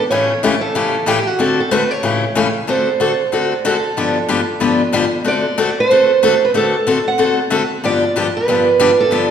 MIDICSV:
0, 0, Header, 1, 3, 480
1, 0, Start_track
1, 0, Tempo, 321543
1, 161, Time_signature, 4, 2, 24, 8
1, 13894, End_track
2, 0, Start_track
2, 0, Title_t, "Steel-string acoustic guitar"
2, 0, Program_c, 0, 25
2, 157, Note_on_c, 0, 73, 91
2, 909, Note_off_c, 0, 73, 0
2, 915, Note_on_c, 0, 69, 74
2, 1611, Note_on_c, 0, 67, 73
2, 1616, Note_off_c, 0, 69, 0
2, 1896, Note_off_c, 0, 67, 0
2, 1896, Note_on_c, 0, 66, 74
2, 2386, Note_off_c, 0, 66, 0
2, 2392, Note_on_c, 0, 69, 65
2, 2561, Note_off_c, 0, 69, 0
2, 2561, Note_on_c, 0, 71, 73
2, 2849, Note_off_c, 0, 71, 0
2, 2849, Note_on_c, 0, 73, 69
2, 3809, Note_off_c, 0, 73, 0
2, 4026, Note_on_c, 0, 72, 77
2, 5476, Note_off_c, 0, 72, 0
2, 5482, Note_on_c, 0, 69, 68
2, 7610, Note_off_c, 0, 69, 0
2, 7882, Note_on_c, 0, 74, 87
2, 8652, Note_off_c, 0, 74, 0
2, 8661, Note_on_c, 0, 72, 82
2, 9623, Note_off_c, 0, 72, 0
2, 9624, Note_on_c, 0, 71, 69
2, 9699, Note_off_c, 0, 71, 0
2, 9812, Note_on_c, 0, 69, 79
2, 10565, Note_on_c, 0, 78, 79
2, 10576, Note_off_c, 0, 69, 0
2, 10995, Note_off_c, 0, 78, 0
2, 11725, Note_on_c, 0, 74, 95
2, 12483, Note_off_c, 0, 74, 0
2, 12489, Note_on_c, 0, 71, 79
2, 13367, Note_off_c, 0, 71, 0
2, 13441, Note_on_c, 0, 69, 85
2, 13894, Note_off_c, 0, 69, 0
2, 13894, End_track
3, 0, Start_track
3, 0, Title_t, "Steel-string acoustic guitar"
3, 0, Program_c, 1, 25
3, 164, Note_on_c, 1, 45, 66
3, 167, Note_on_c, 1, 49, 63
3, 172, Note_on_c, 1, 52, 62
3, 175, Note_on_c, 1, 57, 61
3, 177, Note_on_c, 1, 61, 77
3, 182, Note_on_c, 1, 67, 62
3, 460, Note_off_c, 1, 45, 0
3, 461, Note_off_c, 1, 49, 0
3, 464, Note_off_c, 1, 52, 0
3, 465, Note_off_c, 1, 57, 0
3, 466, Note_off_c, 1, 61, 0
3, 468, Note_off_c, 1, 67, 0
3, 642, Note_on_c, 1, 49, 70
3, 643, Note_on_c, 1, 45, 68
3, 652, Note_on_c, 1, 52, 73
3, 652, Note_on_c, 1, 57, 76
3, 659, Note_on_c, 1, 61, 88
3, 662, Note_on_c, 1, 67, 73
3, 802, Note_off_c, 1, 45, 0
3, 802, Note_off_c, 1, 49, 0
3, 807, Note_off_c, 1, 52, 0
3, 807, Note_off_c, 1, 57, 0
3, 810, Note_off_c, 1, 61, 0
3, 812, Note_off_c, 1, 67, 0
3, 1120, Note_on_c, 1, 49, 65
3, 1121, Note_on_c, 1, 45, 58
3, 1123, Note_on_c, 1, 52, 64
3, 1132, Note_on_c, 1, 61, 71
3, 1134, Note_on_c, 1, 57, 56
3, 1137, Note_on_c, 1, 67, 70
3, 1418, Note_off_c, 1, 49, 0
3, 1419, Note_off_c, 1, 45, 0
3, 1419, Note_off_c, 1, 52, 0
3, 1424, Note_off_c, 1, 61, 0
3, 1425, Note_off_c, 1, 57, 0
3, 1427, Note_off_c, 1, 67, 0
3, 1586, Note_on_c, 1, 45, 78
3, 1593, Note_on_c, 1, 49, 81
3, 1600, Note_on_c, 1, 52, 85
3, 1604, Note_on_c, 1, 57, 88
3, 1607, Note_on_c, 1, 61, 83
3, 1610, Note_on_c, 1, 67, 92
3, 1754, Note_off_c, 1, 45, 0
3, 1757, Note_off_c, 1, 49, 0
3, 1761, Note_off_c, 1, 52, 0
3, 1763, Note_off_c, 1, 57, 0
3, 1764, Note_off_c, 1, 61, 0
3, 1766, Note_off_c, 1, 67, 0
3, 2070, Note_on_c, 1, 50, 62
3, 2080, Note_on_c, 1, 57, 56
3, 2086, Note_on_c, 1, 60, 65
3, 2087, Note_on_c, 1, 66, 65
3, 2092, Note_on_c, 1, 69, 66
3, 2373, Note_off_c, 1, 50, 0
3, 2378, Note_off_c, 1, 57, 0
3, 2381, Note_off_c, 1, 60, 0
3, 2382, Note_off_c, 1, 66, 0
3, 2384, Note_off_c, 1, 69, 0
3, 2556, Note_on_c, 1, 57, 77
3, 2557, Note_on_c, 1, 50, 66
3, 2563, Note_on_c, 1, 60, 76
3, 2573, Note_on_c, 1, 66, 75
3, 2578, Note_on_c, 1, 69, 91
3, 2720, Note_off_c, 1, 50, 0
3, 2720, Note_off_c, 1, 57, 0
3, 2723, Note_off_c, 1, 60, 0
3, 2728, Note_off_c, 1, 66, 0
3, 2730, Note_off_c, 1, 69, 0
3, 3029, Note_on_c, 1, 45, 60
3, 3029, Note_on_c, 1, 49, 61
3, 3037, Note_on_c, 1, 57, 64
3, 3038, Note_on_c, 1, 52, 60
3, 3043, Note_on_c, 1, 61, 56
3, 3047, Note_on_c, 1, 67, 68
3, 3333, Note_off_c, 1, 45, 0
3, 3333, Note_off_c, 1, 49, 0
3, 3337, Note_off_c, 1, 52, 0
3, 3337, Note_off_c, 1, 57, 0
3, 3340, Note_off_c, 1, 61, 0
3, 3342, Note_off_c, 1, 67, 0
3, 3513, Note_on_c, 1, 49, 79
3, 3518, Note_on_c, 1, 45, 78
3, 3524, Note_on_c, 1, 52, 74
3, 3530, Note_on_c, 1, 57, 78
3, 3535, Note_on_c, 1, 67, 81
3, 3536, Note_on_c, 1, 61, 90
3, 3678, Note_off_c, 1, 49, 0
3, 3681, Note_off_c, 1, 45, 0
3, 3683, Note_off_c, 1, 52, 0
3, 3687, Note_off_c, 1, 57, 0
3, 3689, Note_off_c, 1, 67, 0
3, 3690, Note_off_c, 1, 61, 0
3, 3991, Note_on_c, 1, 50, 58
3, 4001, Note_on_c, 1, 57, 60
3, 4009, Note_on_c, 1, 60, 60
3, 4010, Note_on_c, 1, 66, 60
3, 4014, Note_on_c, 1, 69, 64
3, 4294, Note_off_c, 1, 50, 0
3, 4299, Note_off_c, 1, 57, 0
3, 4303, Note_off_c, 1, 60, 0
3, 4304, Note_off_c, 1, 66, 0
3, 4306, Note_off_c, 1, 69, 0
3, 4476, Note_on_c, 1, 50, 59
3, 4485, Note_on_c, 1, 57, 59
3, 4485, Note_on_c, 1, 60, 60
3, 4488, Note_on_c, 1, 66, 71
3, 4491, Note_on_c, 1, 69, 80
3, 4640, Note_off_c, 1, 50, 0
3, 4644, Note_off_c, 1, 57, 0
3, 4645, Note_off_c, 1, 60, 0
3, 4646, Note_off_c, 1, 66, 0
3, 4647, Note_off_c, 1, 69, 0
3, 4958, Note_on_c, 1, 50, 58
3, 4963, Note_on_c, 1, 57, 52
3, 4965, Note_on_c, 1, 60, 59
3, 4975, Note_on_c, 1, 66, 64
3, 4979, Note_on_c, 1, 69, 58
3, 5258, Note_off_c, 1, 50, 0
3, 5261, Note_off_c, 1, 57, 0
3, 5261, Note_off_c, 1, 60, 0
3, 5266, Note_off_c, 1, 66, 0
3, 5268, Note_off_c, 1, 69, 0
3, 5445, Note_on_c, 1, 57, 76
3, 5446, Note_on_c, 1, 50, 81
3, 5450, Note_on_c, 1, 60, 79
3, 5456, Note_on_c, 1, 66, 86
3, 5466, Note_on_c, 1, 69, 85
3, 5605, Note_off_c, 1, 50, 0
3, 5605, Note_off_c, 1, 57, 0
3, 5607, Note_off_c, 1, 60, 0
3, 5610, Note_off_c, 1, 66, 0
3, 5615, Note_off_c, 1, 69, 0
3, 5924, Note_on_c, 1, 43, 49
3, 5930, Note_on_c, 1, 50, 53
3, 5931, Note_on_c, 1, 53, 62
3, 5939, Note_on_c, 1, 62, 67
3, 5941, Note_on_c, 1, 59, 62
3, 5945, Note_on_c, 1, 67, 69
3, 6221, Note_off_c, 1, 43, 0
3, 6224, Note_off_c, 1, 50, 0
3, 6225, Note_off_c, 1, 53, 0
3, 6229, Note_off_c, 1, 62, 0
3, 6230, Note_off_c, 1, 59, 0
3, 6232, Note_off_c, 1, 67, 0
3, 6397, Note_on_c, 1, 43, 67
3, 6399, Note_on_c, 1, 50, 77
3, 6406, Note_on_c, 1, 53, 70
3, 6406, Note_on_c, 1, 59, 76
3, 6412, Note_on_c, 1, 62, 76
3, 6412, Note_on_c, 1, 67, 72
3, 6561, Note_off_c, 1, 43, 0
3, 6562, Note_off_c, 1, 50, 0
3, 6565, Note_off_c, 1, 53, 0
3, 6566, Note_off_c, 1, 59, 0
3, 6568, Note_off_c, 1, 62, 0
3, 6568, Note_off_c, 1, 67, 0
3, 6868, Note_on_c, 1, 43, 62
3, 6873, Note_on_c, 1, 50, 57
3, 6877, Note_on_c, 1, 53, 65
3, 6881, Note_on_c, 1, 59, 71
3, 6888, Note_on_c, 1, 62, 61
3, 6889, Note_on_c, 1, 67, 64
3, 7174, Note_off_c, 1, 43, 0
3, 7176, Note_off_c, 1, 50, 0
3, 7178, Note_off_c, 1, 53, 0
3, 7180, Note_off_c, 1, 59, 0
3, 7183, Note_off_c, 1, 62, 0
3, 7184, Note_off_c, 1, 67, 0
3, 7352, Note_on_c, 1, 43, 73
3, 7360, Note_on_c, 1, 50, 81
3, 7363, Note_on_c, 1, 53, 85
3, 7369, Note_on_c, 1, 59, 82
3, 7373, Note_on_c, 1, 62, 85
3, 7376, Note_on_c, 1, 67, 89
3, 7519, Note_off_c, 1, 43, 0
3, 7523, Note_off_c, 1, 50, 0
3, 7524, Note_off_c, 1, 53, 0
3, 7527, Note_off_c, 1, 59, 0
3, 7529, Note_off_c, 1, 62, 0
3, 7530, Note_off_c, 1, 67, 0
3, 7829, Note_on_c, 1, 57, 60
3, 7830, Note_on_c, 1, 50, 55
3, 7836, Note_on_c, 1, 60, 61
3, 7842, Note_on_c, 1, 66, 66
3, 7845, Note_on_c, 1, 69, 68
3, 8134, Note_off_c, 1, 50, 0
3, 8134, Note_off_c, 1, 57, 0
3, 8137, Note_off_c, 1, 60, 0
3, 8141, Note_off_c, 1, 66, 0
3, 8142, Note_off_c, 1, 69, 0
3, 8324, Note_on_c, 1, 50, 68
3, 8328, Note_on_c, 1, 57, 78
3, 8328, Note_on_c, 1, 60, 72
3, 8335, Note_on_c, 1, 66, 81
3, 8341, Note_on_c, 1, 69, 70
3, 8485, Note_off_c, 1, 50, 0
3, 8487, Note_off_c, 1, 57, 0
3, 8487, Note_off_c, 1, 60, 0
3, 8490, Note_off_c, 1, 66, 0
3, 8493, Note_off_c, 1, 69, 0
3, 8817, Note_on_c, 1, 50, 55
3, 8823, Note_on_c, 1, 57, 66
3, 8825, Note_on_c, 1, 60, 60
3, 8827, Note_on_c, 1, 66, 69
3, 8836, Note_on_c, 1, 69, 61
3, 9108, Note_off_c, 1, 50, 0
3, 9111, Note_off_c, 1, 57, 0
3, 9112, Note_off_c, 1, 60, 0
3, 9113, Note_off_c, 1, 66, 0
3, 9118, Note_off_c, 1, 69, 0
3, 9295, Note_on_c, 1, 57, 80
3, 9297, Note_on_c, 1, 50, 70
3, 9302, Note_on_c, 1, 60, 84
3, 9304, Note_on_c, 1, 66, 82
3, 9315, Note_on_c, 1, 69, 95
3, 9450, Note_off_c, 1, 57, 0
3, 9451, Note_off_c, 1, 50, 0
3, 9454, Note_off_c, 1, 60, 0
3, 9455, Note_off_c, 1, 66, 0
3, 9460, Note_off_c, 1, 69, 0
3, 9765, Note_on_c, 1, 50, 56
3, 9769, Note_on_c, 1, 57, 67
3, 9777, Note_on_c, 1, 60, 65
3, 9781, Note_on_c, 1, 66, 63
3, 9784, Note_on_c, 1, 69, 61
3, 10062, Note_off_c, 1, 50, 0
3, 10064, Note_off_c, 1, 57, 0
3, 10068, Note_off_c, 1, 60, 0
3, 10070, Note_off_c, 1, 66, 0
3, 10071, Note_off_c, 1, 69, 0
3, 10250, Note_on_c, 1, 50, 65
3, 10253, Note_on_c, 1, 57, 71
3, 10262, Note_on_c, 1, 60, 71
3, 10263, Note_on_c, 1, 66, 68
3, 10266, Note_on_c, 1, 69, 77
3, 10407, Note_off_c, 1, 50, 0
3, 10409, Note_off_c, 1, 57, 0
3, 10413, Note_off_c, 1, 60, 0
3, 10414, Note_off_c, 1, 66, 0
3, 10415, Note_off_c, 1, 69, 0
3, 10716, Note_on_c, 1, 50, 57
3, 10724, Note_on_c, 1, 57, 60
3, 10732, Note_on_c, 1, 66, 59
3, 10733, Note_on_c, 1, 60, 60
3, 10735, Note_on_c, 1, 69, 67
3, 11017, Note_off_c, 1, 50, 0
3, 11021, Note_off_c, 1, 57, 0
3, 11025, Note_off_c, 1, 66, 0
3, 11026, Note_off_c, 1, 60, 0
3, 11027, Note_off_c, 1, 69, 0
3, 11201, Note_on_c, 1, 50, 76
3, 11208, Note_on_c, 1, 57, 77
3, 11211, Note_on_c, 1, 60, 74
3, 11217, Note_on_c, 1, 66, 80
3, 11224, Note_on_c, 1, 69, 84
3, 11362, Note_off_c, 1, 50, 0
3, 11366, Note_off_c, 1, 57, 0
3, 11367, Note_off_c, 1, 60, 0
3, 11370, Note_off_c, 1, 66, 0
3, 11374, Note_off_c, 1, 69, 0
3, 11697, Note_on_c, 1, 50, 51
3, 11698, Note_on_c, 1, 43, 58
3, 11706, Note_on_c, 1, 53, 62
3, 11708, Note_on_c, 1, 59, 62
3, 11711, Note_on_c, 1, 62, 56
3, 11714, Note_on_c, 1, 67, 66
3, 11987, Note_off_c, 1, 43, 0
3, 11987, Note_off_c, 1, 50, 0
3, 11991, Note_off_c, 1, 53, 0
3, 11992, Note_off_c, 1, 59, 0
3, 11994, Note_off_c, 1, 62, 0
3, 11996, Note_off_c, 1, 67, 0
3, 12176, Note_on_c, 1, 43, 68
3, 12185, Note_on_c, 1, 50, 72
3, 12190, Note_on_c, 1, 59, 79
3, 12193, Note_on_c, 1, 53, 69
3, 12196, Note_on_c, 1, 62, 73
3, 12198, Note_on_c, 1, 67, 66
3, 12329, Note_off_c, 1, 43, 0
3, 12334, Note_off_c, 1, 50, 0
3, 12336, Note_off_c, 1, 59, 0
3, 12338, Note_off_c, 1, 53, 0
3, 12339, Note_off_c, 1, 62, 0
3, 12340, Note_off_c, 1, 67, 0
3, 12659, Note_on_c, 1, 43, 62
3, 12659, Note_on_c, 1, 50, 57
3, 12670, Note_on_c, 1, 53, 57
3, 12671, Note_on_c, 1, 59, 57
3, 12671, Note_on_c, 1, 62, 67
3, 12673, Note_on_c, 1, 67, 62
3, 12947, Note_off_c, 1, 43, 0
3, 12947, Note_off_c, 1, 50, 0
3, 12952, Note_off_c, 1, 53, 0
3, 12953, Note_off_c, 1, 59, 0
3, 12953, Note_off_c, 1, 62, 0
3, 12954, Note_off_c, 1, 67, 0
3, 13129, Note_on_c, 1, 43, 72
3, 13129, Note_on_c, 1, 50, 85
3, 13131, Note_on_c, 1, 59, 73
3, 13135, Note_on_c, 1, 53, 74
3, 13142, Note_on_c, 1, 62, 80
3, 13144, Note_on_c, 1, 67, 85
3, 13285, Note_off_c, 1, 43, 0
3, 13285, Note_off_c, 1, 50, 0
3, 13286, Note_off_c, 1, 59, 0
3, 13288, Note_off_c, 1, 53, 0
3, 13291, Note_off_c, 1, 62, 0
3, 13293, Note_off_c, 1, 67, 0
3, 13598, Note_on_c, 1, 43, 60
3, 13611, Note_on_c, 1, 50, 69
3, 13613, Note_on_c, 1, 53, 59
3, 13614, Note_on_c, 1, 62, 59
3, 13616, Note_on_c, 1, 59, 56
3, 13616, Note_on_c, 1, 67, 72
3, 13894, Note_off_c, 1, 43, 0
3, 13894, Note_off_c, 1, 50, 0
3, 13894, Note_off_c, 1, 53, 0
3, 13894, Note_off_c, 1, 59, 0
3, 13894, Note_off_c, 1, 62, 0
3, 13894, Note_off_c, 1, 67, 0
3, 13894, End_track
0, 0, End_of_file